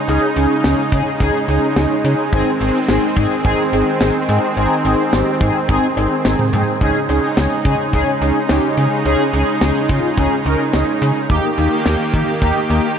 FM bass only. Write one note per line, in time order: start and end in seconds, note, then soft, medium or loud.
0.08 0.19 C#2 loud
0.36 0.47 C#2 loud
0.64 0.75 C#2 loud
0.92 1.02 C#3 loud
1.20 1.31 C#2 loud
1.48 1.59 C#2 loud
1.76 1.87 C#2 loud
2.05 2.15 C#3 loud
2.33 2.43 G#1 loud
2.61 2.71 G#1 loud
2.89 2.99 G#1 loud
3.17 3.27 G#2 loud
3.45 3.55 G#1 loud
3.73 3.83 G#1 loud
4.01 4.11 G#1 loud
4.29 4.39 G#2 loud
4.57 4.67 G#1 loud
4.85 4.95 G#1 loud
5.13 5.23 G#1 loud
5.41 5.51 G#2 loud
5.69 5.79 G#1 loud
5.97 6.07 G#1 loud
6.25 6.35 G#1 loud
6.53 6.63 G#2 loud
6.81 6.91 C#2 loud
7.09 7.20 C#2 loud
7.37 7.47 C#2 loud
7.65 7.75 C#3 loud
7.93 8.04 C#2 loud
8.21 8.32 C#2 loud
8.50 8.60 C#2 loud
8.77 8.88 C#3 medium
9.05 9.16 C#2 loud
9.33 9.44 C#2 loud
9.61 9.72 C#2 loud
9.89 10.00 C#3 loud
10.18 10.28 C#2 loud
10.46 10.56 C#2 loud
10.74 10.84 C#2 loud
11.02 11.12 C#3 loud
11.30 11.40 D#2 loud
11.58 11.68 D#2 loud
11.86 11.96 D#2 loud
12.14 12.24 D#3 loud
12.42 12.52 D#2 loud
12.70 12.80 D#2 loud